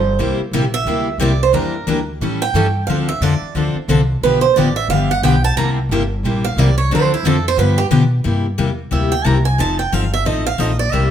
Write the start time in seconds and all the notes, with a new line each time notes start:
Already playing: G1 C5
0.19 C2 C3 G3 A#3 E4 G4
0.51 A#1 C3 G3 A#3 E4 G4
0.74 E5
0.85 D2 C3 G3 A#3 E4 G4
1.18 C2 C3 G3 A#3 E4 G4
1.22 D5
1.43 C5
1.53 E2 E3 G3 A#3 D4 E4 G4 A#4
1.87 D2 E3 G3 A#3 D4 E4 G4 A#4
2.21 A2 E3 G3 C#4 E4 A4
2.42 G5
2.54 G2 E3 G3 C#4 E4 A4
2.87 D2 D3 F3 C4 D4 A4 F5
3.09 E5
3.21 F2 D3 F3 C4 D4 A4 D5
3.41 muted upright bass stroke
3.55 D2 D3 F3 C4 D4 A4
3.75 muted upright bass stroke
3.88 C2 D3 F3 C4 D4 A4
4.21 B1 D3 F3 B3 D4 B4
4.25 G4
4.41 C5
4.56 A1 D3 F3 B3 D4 G4 D5
4.76 E5
4.88 G1 D3 F3 B3 D4 G4 F5
5.11 F#5
5.22 B1 D3 F3 B3 D4 G4 G5
5.44 A5
5.56 C2 C3 G3 A#3 E4 G4 A#5
5.89 G1 C3 G3 A#3 E4 G4
6.23 A#1 C3 G3 A#3 E4 G4
6.44 F5
6.56 C2 C3 G3 A#3 E4 G4 D5
6.78 C#5
6.90 D2 D3 F3 C4 D4 A4
6.95 C5
7.14 E4
7.23 F2 D3 F3 C4 D4 A4
7.48 C5
7.58 G2 D3 F3 B3 D4 G4 B4
7.78 G4
7.91 B2 D3 F3 B3 D4 G4
8.24 G2 C3 G3 A#3 E4 G4
8.58 E2 C3 G3 A#3 E4 G4
8.91 D2 C3 G3 A#3 E4 G4 E5
9.12 G5
9.24 C2 C3 G3 A#3 E4 G4 A#5
9.45 G#5
9.58 F1 F3 C4 D#4 A4 A5
9.79 G5
9.92 G1 F3 C4 D#4 A4 F5
10.14 E5
10.25 A1 F3 C4 D#4 A4 D#5
10.46 F5
10.58 A#1 F3 C4 D#4 A4 D#5
10.79 D5
10.92 C2 C3 G3 A#3 E4 G4 E5